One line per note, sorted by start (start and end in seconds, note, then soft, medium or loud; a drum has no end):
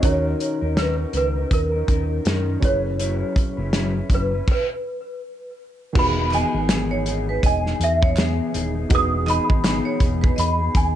0.00 0.33 D#2 medium
0.00 0.62 D#3 medium
0.00 2.57 C#4 medium
0.00 0.62 C#4 medium
0.00 2.58 D#4 medium
0.00 0.62 D#4 medium
0.00 2.59 F#4 medium
0.00 0.60 A#4 medium
0.00 0.80 C#5 medium
0.00 kick loud
0.00 closed hi-hat medium
0.05 2.60 A#5 medium
0.40 closed hi-hat medium
0.61 1.04 D#2 medium
0.61 0.76 C#4 soft
0.61 0.76 D#4 soft
0.61 0.77 A#4 medium
0.75 0.98 D#3 medium
0.75 0.99 C#4 medium
0.75 0.99 D#4 medium
0.75 0.97 A#4 medium
0.75 1.16 B4 loud
0.75 snare loud
0.75 closed hi-hat medium
0.98 1.15 D#4 soft
0.98 1.14 A#4 soft
1.02 1.13 C#4 soft
1.13 1.44 C#2 medium
1.13 1.36 D#3 medium
1.13 1.37 C#4 medium
1.13 1.37 D#4 medium
1.13 1.54 B4 medium
1.13 closed hi-hat medium
1.17 1.35 A#4 medium
1.36 1.75 C#4 soft
1.36 1.73 D#4 soft
1.36 1.71 A#4 soft
1.51 1.81 D#2 medium
1.51 2.60 A#4 medium
1.51 kick medium
1.51 closed hi-hat medium
1.72 1.88 D#4 soft
1.72 1.88 A#4 soft
1.76 1.87 C#4 soft
1.86 2.18 D#2 medium
1.86 2.23 D#3 medium
1.86 2.24 C#4 medium
1.86 2.25 D#4 medium
1.86 kick medium
1.86 closed hi-hat medium
1.91 2.26 A#4 medium
2.25 2.55 F#2 medium
2.25 2.62 D#3 medium
2.25 2.61 C#4 medium
2.25 2.63 D#4 medium
2.25 2.63 A#4 medium
2.25 snare loud
2.25 closed hi-hat medium
2.60 3.22 F#1 medium
2.60 2.98 F#3 medium
2.60 4.43 C#4 medium
2.60 2.99 C#4 medium
2.60 4.43 E4 medium
2.60 3.00 E4 medium
2.60 4.44 G#4 medium
2.60 kick loud
2.60 closed hi-hat medium
2.65 3.00 B4 medium
2.65 4.45 B4 medium
2.65 4.16 C#5 medium
2.99 3.59 F#3 medium
2.99 3.59 C#4 medium
2.99 3.58 E4 medium
2.99 3.56 B4 medium
2.99 closed hi-hat medium
3.36 kick medium
3.36 closed hi-hat medium
3.57 4.00 F#1 loud
3.57 3.72 C#4 soft
3.57 3.73 E4 soft
3.57 3.73 B4 medium
3.73 3.95 F#3 medium
3.73 3.96 C#4 medium
3.73 3.95 E4 loud
3.73 3.93 B4 loud
3.73 snare loud
3.73 closed hi-hat medium
3.94 4.09 C#4 soft
3.94 4.11 E4 soft
3.94 4.10 B4 medium
4.09 4.40 F#1 medium
4.09 4.32 F#3 medium
4.09 4.33 C#4 medium
4.09 4.32 E4 medium
4.09 kick medium
4.09 closed hi-hat medium
4.13 4.30 B4 medium
4.13 4.47 B4 medium
4.31 4.49 C#4 soft
4.31 4.48 E4 soft
4.31 4.47 B4 soft
4.48 5.56 B4 medium
4.48 kick loud
4.48 crash medium
5.93 6.43 E1 loud
5.93 8.85 D#3 medium
5.93 6.17 E3 medium
5.93 6.17 B3 medium
5.93 6.18 D#4 medium
5.93 8.86 F#4 medium
5.93 6.04 G4 soft
5.93 6.16 G#4 medium
5.93 kick loud
5.93 crash loud
5.98 8.88 B4 medium
5.98 6.35 B5 loud
6.03 8.90 G#4 medium
6.17 6.33 B3 soft
6.17 6.33 D#4 medium
6.17 6.32 G#4 medium
6.31 6.55 E3 medium
6.31 6.55 B3 medium
6.31 6.53 D#5 medium
6.31 7.45 G#5 loud
6.31 clap medium
6.31 closed hi-hat medium
6.36 6.55 D#4 medium
6.36 6.53 G#4 medium
6.54 7.39 G#1 medium
6.54 6.69 D#4 soft
6.54 6.69 G#4 medium
6.58 6.68 B3 soft
6.68 7.03 E3 medium
6.68 7.05 B3 medium
6.68 7.06 D#4 medium
6.68 7.07 G#4 medium
6.68 snare loud
6.68 clap medium
6.68 closed hi-hat medium
6.91 7.05 C#5 medium
7.04 7.27 E3 medium
7.04 7.28 B3 medium
7.04 7.28 D#4 medium
7.04 closed hi-hat medium
7.09 7.26 G#4 medium
7.27 7.67 B3 soft
7.27 7.65 D#4 medium
7.27 7.62 G#4 medium
7.27 7.43 B4 medium
7.43 7.72 E1 loud
7.43 7.64 D#5 medium
7.43 7.82 G#5 loud
7.43 kick medium
7.43 closed hi-hat medium
7.64 8.02 D#4 soft
7.64 8.00 G#4 soft
7.64 snare soft
7.68 8.04 B3 soft
7.80 8.39 E2 medium
7.80 8.51 E5 medium
7.80 closed hi-hat medium
8.01 8.16 B3 soft
8.01 8.17 D#4 soft
8.01 8.16 G#4 medium
8.01 8.16 C#5 medium
8.01 kick loud
8.17 8.50 E3 medium
8.17 8.52 B3 medium
8.17 8.55 G#4 medium
8.17 snare loud
8.17 clap medium
8.17 closed hi-hat medium
8.52 8.83 D#1 medium
8.52 8.75 E3 medium
8.52 8.76 B3 medium
8.52 8.76 D#4 medium
8.52 closed hi-hat medium
8.56 8.73 G#4 medium
8.75 8.89 B3 soft
8.75 8.89 D#4 soft
8.75 8.90 G#4 medium
8.89 9.38 E1 loud
8.89 9.12 E3 medium
8.89 9.12 B3 medium
8.89 10.95 D#4 medium
8.89 9.12 D#4 medium
8.89 10.95 F#4 medium
8.89 9.10 G#4 medium
8.89 10.95 G#4 medium
8.89 kick loud
8.89 closed hi-hat loud
8.94 10.95 B4 medium
8.94 9.31 D#6 loud
9.11 9.26 B3 soft
9.11 9.27 D#4 soft
9.11 9.27 G#4 medium
9.26 9.49 E3 medium
9.26 9.49 B3 medium
9.26 9.49 D#4 medium
9.26 9.48 D#5 medium
9.26 10.38 B5 loud
9.26 clap medium
9.26 closed hi-hat medium
9.30 9.47 G#4 medium
9.48 9.79 G#1 loud
9.48 9.63 B3 soft
9.48 9.64 D#4 medium
9.48 9.64 G#4 medium
9.48 kick medium
9.63 9.98 E3 medium
9.63 10.00 B3 medium
9.63 10.02 D#4 medium
9.63 10.02 G#4 medium
9.63 snare loud
9.63 clap medium
9.63 closed hi-hat medium
9.85 10.00 C#5 medium
10.00 10.30 E1 loud
10.00 10.22 E3 medium
10.00 10.23 B3 medium
10.00 10.23 D#4 medium
10.00 10.21 G#4 medium
10.00 kick medium
10.00 closed hi-hat medium
10.21 10.59 D#4 soft
10.21 10.58 G#4 medium
10.21 10.36 B4 medium
10.21 kick loud
10.26 10.61 B3 soft
10.36 10.67 E2 loud
10.36 10.58 D#5 medium
10.36 10.77 B5 loud
10.36 closed hi-hat loud
10.59 10.95 B3 soft
10.59 10.95 D#4 soft
10.59 10.94 G#4 medium
10.75 10.95 D#2 loud
10.75 10.95 G#5 loud
10.75 kick medium
10.75 closed hi-hat medium